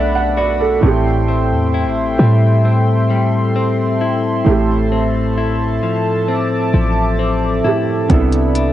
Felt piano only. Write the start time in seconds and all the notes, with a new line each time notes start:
Already playing: B2 B3 D4 E5
0.15 F#5
0.38 D5
0.61 A4
0.81 A2 A3 C4
0.86 G4
4.44 A2 A3 E4
4.50 G4
7.64 A2 A3 E4 G4
8.08 C3 B3 D4
8.13 E4 A4